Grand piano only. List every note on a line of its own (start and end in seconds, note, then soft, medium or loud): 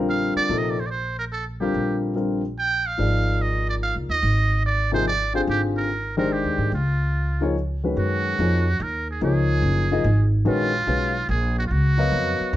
0.00 0.46 D3 medium
0.00 0.47 G3 medium
0.00 0.47 C4 medium
0.00 0.47 F4 medium
0.00 0.47 A#4 medium
0.49 0.75 C3 medium
0.49 0.75 F3 soft
0.49 0.75 A#3 soft
0.49 0.75 D#4 soft
0.49 0.75 A4 medium
1.60 2.13 D3 medium
1.60 2.13 G3 medium
1.60 2.13 C4 medium
1.60 2.13 F4 medium
1.60 2.14 A#4 medium
2.15 2.40 D3 soft
2.15 2.40 G3 soft
2.15 2.41 C4 soft
2.15 2.41 F4 soft
2.15 2.41 A#4 medium
2.98 4.14 F3 soft
2.98 4.15 A#3 soft
2.98 4.15 D#4 soft
2.98 4.15 G#4 soft
2.98 4.15 D5 soft
4.92 5.04 C3 medium
4.92 5.05 F3 medium
4.92 5.05 A#3 medium
4.92 5.05 D#4 medium
4.92 5.05 G#4 medium
5.34 5.86 D3 medium
5.34 5.87 C4 medium
5.34 5.87 F4 medium
5.34 5.86 G4 medium
5.34 5.87 G#4 medium
6.17 6.69 D#3 medium
6.17 6.70 G#3 medium
6.17 6.70 D4 medium
6.17 6.70 G4 medium
6.17 6.70 C5 medium
7.41 7.54 F3 medium
7.41 7.54 A#3 medium
7.41 7.54 D#4 medium
7.41 7.54 G#4 medium
7.41 7.55 C#5 medium
7.83 8.36 D#3 soft
7.83 8.36 G#3 soft
7.83 8.36 C#4 soft
7.83 8.36 F#4 soft
7.83 8.36 B4 medium
8.39 8.64 F3 medium
8.39 8.64 A#3 soft
8.39 8.64 D#4 soft
8.39 8.64 G#4 soft
8.39 8.64 C#5 medium
9.22 9.85 F3 medium
9.22 9.85 A#3 medium
9.22 9.86 D#4 medium
9.22 9.86 G#4 medium
9.22 9.86 C#5 medium
9.91 10.03 F3 medium
9.91 10.04 A#3 medium
9.91 10.04 D#4 medium
9.91 10.04 G#4 medium
9.91 10.04 D#5 medium
10.45 10.70 D#3 medium
10.45 10.71 G#3 medium
10.45 10.71 C#4 medium
10.45 10.71 F#4 medium
10.45 10.72 B4 medium
10.87 11.12 G#3 soft
10.87 11.12 C#4 soft
10.87 11.13 F#4 soft
10.87 11.13 B4 soft
10.87 11.13 F5 medium
11.97 12.50 F#3 medium
11.97 12.51 B3 medium
11.97 12.51 A#4 medium
11.97 12.51 D#5 medium
11.97 12.51 F5 medium